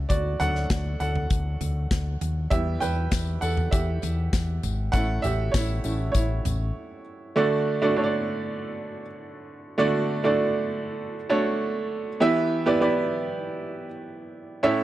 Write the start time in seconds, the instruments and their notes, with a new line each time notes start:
Already playing: upright piano F#4 G4 D5 E5
0.09 fingered electric bass D2, upright piano F#4 D5, kick, closed hi-hat
0.39 fingered electric bass D2, upright piano F#3 A3 D4 A4 F#5, closed hi-hat, floor tom
0.55 snare
0.70 fingered electric bass D2, kick, snare, closed hi-hat
1.00 fingered electric bass D2, upright piano A4 F#5, closed hi-hat
1.15 floor tom
1.30 fingered electric bass D2, kick, closed hi-hat
1.61 fingered electric bass D2, closed hi-hat, floor tom
1.91 fingered electric bass D2, kick, snare, closed hi-hat
2.21 fingered electric bass D#2, closed hi-hat, floor tom
2.50 fingered electric bass E2, upright piano G3 B3 E4 G4 E5, kick, closed hi-hat
2.80 fingered electric bass E2, upright piano B4 G5, closed hi-hat, floor tom, tambourine
3.11 fingered electric bass E2, kick, snare, closed hi-hat, tambourine
3.41 fingered electric bass E2, upright piano A4 F#5, closed hi-hat, tambourine
3.57 floor tom
3.71 fingered electric bass E2, upright piano G4 E5, kick, closed hi-hat, tambourine
4.02 fingered electric bass E2, closed hi-hat, floor tom, tambourine
4.33 fingered electric bass E2, kick, snare, closed hi-hat, tambourine
4.63 fingered electric bass G#1, closed hi-hat, floor tom, tambourine
4.92 fingered electric bass A1, upright piano A3 C#4 E4 A4 F#5, kick, closed hi-hat, tambourine
5.22 fingered electric bass A1, upright piano G4 E5, closed hi-hat, floor tom, tambourine
5.52 fingered electric bass A1, upright piano E4 C#5, kick, snare, closed hi-hat, tambourine
5.84 fingered electric bass A1, upright piano A3 C#4 E4, closed hi-hat, tambourine
6.12 fingered electric bass A1, upright piano E4 C#5, kick, closed hi-hat, tambourine
6.45 fingered electric bass A1, closed hi-hat, floor tom, tambourine
7.36 upright piano D3 A3 D4 F#4 A4 D5
7.82 upright piano A3 D4 F#4 A4 D5
7.96 upright piano A3 D4 F#4 A4 C#5
8.04 upright piano D5
9.78 upright piano D3 A3 D4 F#4 A4 D5
10.24 upright piano A3 D4 F#4 A4 D5
11.29 upright piano A3 D4 F#4 A4 C#5
12.20 upright piano E3 B3 E4 G4 B4 E5
12.66 upright piano B3 E4 G4 B4 D5
12.80 upright piano B3 E4 G4 B4 D5
14.63 upright piano A2 C#4 E4 A4 C#5 E5